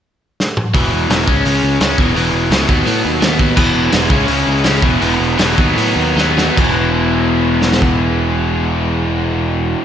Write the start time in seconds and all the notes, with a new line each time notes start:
0.40 snare
0.57 mid tom
0.74 E1 E2 B2 E3, kick, open hi-hat
0.92 E1
1.09 E1 E2 B2 E3, snare, open hi-hat
1.27 C#2 C#3 G#3 C#4, kick
1.45 C#2 C#3 G#3 C#4, open hi-hat
1.63 C#2
1.80 C#2 C#3 G#3 C#4, snare, open hi-hat
1.98 E1 E2 B2 E3, kick
2.15 E1 E2 B2 E3, open hi-hat
2.33 E1
2.50 C#2 E2 B2 E3, snare, open hi-hat
2.68 D#2 B2 F#3 B3, kick
2.85 A2 B2 F#3 B3, open hi-hat
3.05 D#2
3.21 D#2 B2 F#3 B3, snare, open hi-hat
3.38 B2 F#3 B3, kick
3.56 E1 E2 B2 E3 G#3 B3, kick, crash
3.60 E4
3.74 E1
3.91 E1 E2 B2 E3, snare, open hi-hat
4.09 C#2 C#3 G#3 C#4 E4, kick
4.26 C#2 C#3 G#3 C#4, open hi-hat
4.48 C#2
4.63 C#2 C#3 G#3 C#4 E4, snare, open hi-hat
4.81 E1 E2 B2 E3 G#3 B3 E4, kick
5.00 E1 E2 B2 E3, open hi-hat
5.20 E1
5.37 E1 E2 B2 E3 G#3 B3 E4, snare, open hi-hat
5.56 D#2 B2 D#3 F#3 B3 D#4, kick
5.77 A2 B2 F#3 B3, open hi-hat
5.96 D#2
6.15 D#2 B2 D#3 F#3 B3 D#4, snare
6.37 B2 F#3 B3, snare
6.56 E1 E2 B2 E3 G#3 B3 E4, kick, crash
6.60 E3
7.62 snare
7.72 snare
7.82 kick